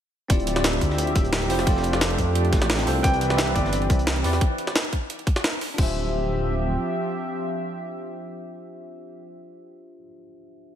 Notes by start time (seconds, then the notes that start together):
0.28 D1 F3 C4 E4 F4 G4 D5 E5, kick, closed hi-hat
0.39 closed hi-hat
0.47 closed hi-hat
0.53 C4 E4 F4, snare
0.57 G4 D5
0.64 snare, closed hi-hat
0.73 closed hi-hat
0.81 D2, kick, closed hi-hat
0.90 snare
0.98 closed hi-hat
1.07 closed hi-hat
1.16 D1, kick, closed hi-hat
1.24 closed hi-hat
1.32 snare, closed hi-hat
1.42 closed hi-hat
1.48 F1 C4 E4 F4 G4 C5, snare, closed hi-hat, open hi-hat
1.59 snare
1.65 A3 C4 D4 F4 G4 A4 D5, kick, closed hi-hat, open hi-hat
1.76 snare
1.84 closed hi-hat
1.90 C4 F4 G4, snare
1.95 A4 D5
2.01 snare, closed hi-hat
2.10 closed hi-hat
2.18 F2, kick, closed hi-hat
2.35 closed hi-hat
2.45 closed hi-hat
2.52 A1, kick, snare, closed hi-hat
2.62 snare
2.70 snare, closed hi-hat
2.75 snare, closed hi-hat
2.78 snare, closed hi-hat
2.85 C2 C4 F4 G4 A4 C5, closed hi-hat, open hi-hat
3.03 C2 E3 C4 E4 G4 B4 D5 G5, kick, closed hi-hat
3.13 closed hi-hat
3.21 closed hi-hat
3.28 C4 E4 G4, snare
3.32 B4 D5
3.37 E5, snare, closed hi-hat
3.48 closed hi-hat
3.55 G1 D5, kick, closed hi-hat
3.65 snare
3.73 closed hi-hat
3.82 closed hi-hat
3.90 C2, kick, closed hi-hat
3.99 closed hi-hat
4.07 snare, closed hi-hat
4.16 closed hi-hat
4.23 E2 C4 E4 G4 B4 D5, snare, closed hi-hat, open hi-hat
4.33 snare
4.41 kick, closed hi-hat
4.58 closed hi-hat
4.67 snare
4.76 snare, closed hi-hat
4.84 closed hi-hat
4.93 kick, closed hi-hat
5.10 closed hi-hat
5.19 closed hi-hat
5.27 kick, closed hi-hat
5.36 snare
5.44 snare, closed hi-hat
5.53 closed hi-hat
5.61 open hi-hat
5.74 D4 F4
5.78 D1 F3 C4 G4 C5 E5, kick, crash
5.83 E5